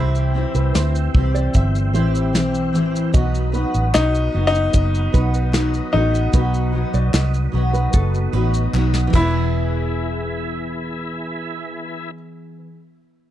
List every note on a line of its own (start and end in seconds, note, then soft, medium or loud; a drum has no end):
0.00 0.44 C2 medium
0.00 0.35 C3 medium
0.00 0.33 E3 medium
0.00 3.11 E3 medium
0.00 0.34 C4 medium
0.00 3.11 C4 medium
0.00 0.35 E4 medium
0.00 0.90 E4 medium
0.00 3.11 E4 medium
0.00 0.36 G4 medium
0.00 3.11 G4 medium
0.00 0.33 C5 medium
0.15 shaker medium
0.34 1.13 E3 medium
0.34 1.14 C4 medium
0.34 1.15 E4 medium
0.34 1.16 G4 medium
0.55 0.71 C2 medium
0.55 0.74 B4 medium
0.55 shaker soft
0.75 1.08 D2 loud
0.75 0.94 C5 medium
0.75 snare loud
0.75 shaker medium
0.95 shaker medium
1.14 1.47 C2 medium
1.14 1.92 E3 medium
1.14 1.93 C4 medium
1.14 1.94 E4 medium
1.14 1.95 G4 medium
1.14 kick loud
1.34 1.55 D5 medium
1.34 shaker soft
1.54 1.95 G1 loud
1.54 1.93 E5 medium
1.54 kick medium
1.54 shaker medium
1.75 shaker soft
1.94 2.34 A1 medium
1.94 2.32 E3 medium
1.94 2.33 C4 medium
1.94 2.34 E4 medium
1.94 2.34 G4 medium
1.94 2.13 C5 medium
1.94 shaker medium
2.15 shaker medium
2.33 2.74 B1 medium
2.33 2.71 E3 medium
2.33 2.73 C4 medium
2.33 2.74 E4 medium
2.33 2.74 G4 medium
2.33 snare loud
2.33 shaker medium
2.55 shaker medium
2.73 3.07 A1 medium
2.73 3.13 E3 medium
2.73 3.13 C4 medium
2.73 3.14 E4 medium
2.73 3.14 G4 medium
2.73 shaker soft
2.96 shaker soft
3.13 3.64 B1 loud
3.13 3.54 B2 medium
3.13 3.51 F#3 loud
3.13 9.10 F#3 medium
3.13 3.52 B3 medium
3.13 9.10 B3 medium
3.13 3.53 D#4 medium
3.13 9.10 D#4 medium
3.13 3.54 F#4 medium
3.13 3.52 D#5 loud
3.13 kick loud
3.13 shaker medium
3.35 shaker medium
3.52 4.31 F#3 medium
3.52 4.33 B3 medium
3.52 4.33 D#4 medium
3.52 4.34 F#4 medium
3.52 4.30 B4 medium
3.52 shaker soft
3.74 3.91 A1 medium
3.74 shaker soft
3.94 4.27 B1 medium
3.94 4.46 D#4 loud
3.94 snare loud
3.94 clap loud
3.94 shaker medium
4.15 shaker medium
4.33 4.67 F#1 medium
4.33 5.11 F#3 medium
4.33 5.13 B3 medium
4.33 5.13 D#4 medium
4.33 5.14 F#4 medium
4.47 5.91 D#4 loud
4.54 shaker soft
4.73 5.07 F#1 medium
4.73 5.12 D#5 medium
4.73 kick medium
4.73 shaker medium
4.95 shaker soft
5.12 5.80 B1 medium
5.12 5.51 F#3 medium
5.12 5.52 B3 medium
5.12 5.53 D#4 medium
5.12 5.54 F#4 medium
5.12 5.33 B4 medium
5.12 kick medium
5.12 shaker medium
5.34 shaker medium
5.52 5.91 F#3 medium
5.52 5.92 B3 medium
5.52 5.93 D#4 medium
5.52 5.93 F#4 medium
5.52 snare loud
5.52 clap medium
5.52 shaker medium
5.74 shaker medium
5.92 6.27 A1 medium
5.92 6.32 F#3 medium
5.92 6.32 B3 medium
5.92 8.69 D#4 medium
5.92 6.33 D#4 medium
5.92 6.33 F#4 medium
5.92 6.13 A4 medium
6.15 shaker soft
6.32 6.83 B1 loud
6.32 6.73 B2 medium
6.32 6.71 F#3 medium
6.32 6.72 B3 medium
6.32 6.73 D#4 medium
6.32 6.74 F#4 medium
6.32 6.72 B4 loud
6.32 kick loud
6.32 shaker medium
6.54 shaker medium
6.72 7.51 F#3 medium
6.72 7.53 B3 medium
6.72 7.53 D#4 medium
6.72 7.54 F#4 medium
6.94 7.10 B1 medium
6.94 7.13 D5 medium
6.94 shaker soft
7.14 7.47 C2 medium
7.14 7.33 D#5 medium
7.14 snare loud
7.14 clap loud
7.14 shaker medium
7.34 shaker medium
7.52 7.87 B1 medium
7.52 8.31 F#3 medium
7.52 8.33 B3 medium
7.52 8.33 D#4 medium
7.52 8.34 F#4 medium
7.73 7.93 B4 medium
7.73 shaker soft
7.93 8.26 F#1 medium
7.93 8.33 A4 medium
7.93 kick medium
7.93 shaker medium
8.14 shaker soft
8.33 8.66 A1 medium
8.33 8.72 F#3 medium
8.33 8.73 B3 medium
8.33 8.74 D#4 medium
8.33 8.74 F#4 medium
8.33 8.52 B4 medium
8.54 shaker medium
8.73 9.06 B1 medium
8.73 9.07 F#3 medium
8.73 9.14 B3 medium
8.73 9.14 D#4 medium
8.73 9.15 F#4 medium
8.73 clap medium
8.94 snare medium
9.07 12.57 E3 loud
9.13 12.11 E1 loud
9.13 12.11 E3 medium
9.13 12.66 B3 medium
9.13 12.11 E4 medium
9.13 12.13 E4 medium
9.13 12.11 G#4 medium
9.13 11.89 B4 medium
9.13 12.11 B4 medium
9.13 kick medium
9.13 clap medium
9.13 crash medium
9.22 12.72 E4 medium
9.28 12.78 G#4 loud